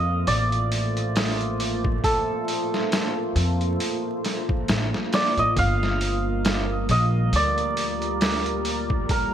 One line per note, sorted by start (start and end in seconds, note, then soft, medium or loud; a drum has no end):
0.00 0.22 F2 loud
0.00 5.52 A3 medium
0.00 9.34 A#3 medium
0.00 9.05 F4 medium
0.00 5.52 C5 loud
0.00 0.33 D#5 loud
0.00 0.74 F5 loud
0.27 2.00 A1 medium
0.27 2.74 D5 loud
0.27 open hi-hat medium
0.52 closed hi-hat soft
0.72 open hi-hat medium
0.97 closed hi-hat soft
1.16 snare loud
1.16 open hi-hat medium
1.41 closed hi-hat soft
1.60 open hi-hat medium
1.85 kick loud
2.04 4.97 A4 medium
2.04 kick loud
2.04 open hi-hat medium
2.48 open hi-hat medium
2.74 snare soft
2.92 snare loud
2.92 open hi-hat medium
3.36 3.75 F2 loud
3.36 open hi-hat medium
3.61 closed hi-hat soft
3.80 open hi-hat medium
4.24 snare soft
4.24 open hi-hat medium
4.49 kick loud
4.68 4.90 A1 medium
4.68 snare loud
4.68 open hi-hat medium
4.94 snare soft
5.13 5.45 D5 medium
5.13 snare loud
5.13 open hi-hat medium
5.37 5.54 A1 medium
5.37 6.91 D#5 loud
5.37 closed hi-hat soft
5.56 6.85 G1 loud
5.56 9.34 G3 medium
5.56 9.34 A#4 loud
5.56 7.80 F5 loud
5.56 kick loud
5.56 open hi-hat loud
5.83 snare soft
6.01 open hi-hat medium
6.45 snare loud
6.45 open hi-hat medium
6.89 7.28 A#1 loud
6.89 7.42 D#5 medium
6.89 open hi-hat medium
7.33 9.06 D2 medium
7.33 9.34 D5 loud
7.33 open hi-hat medium
7.58 closed hi-hat soft
7.77 open hi-hat medium
8.02 closed hi-hat soft
8.21 snare loud
8.21 open hi-hat medium
8.46 closed hi-hat soft
8.65 open hi-hat medium
8.90 kick medium
9.09 9.34 G4 medium
9.09 9.34 A#4 medium
9.09 kick loud
9.09 open hi-hat medium